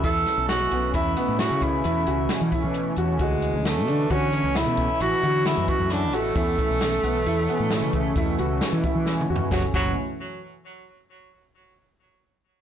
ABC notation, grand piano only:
X:1
M:7/4
L:1/8
Q:1/4=133
K:F#m
V:1 name="Grand piano"
E2 z B, E B, E2 E F2 E2 F | F2 z D F C E2 E F2 E2 F | E2 z B, E B, E2 E F2 E2 F | F F z12 |]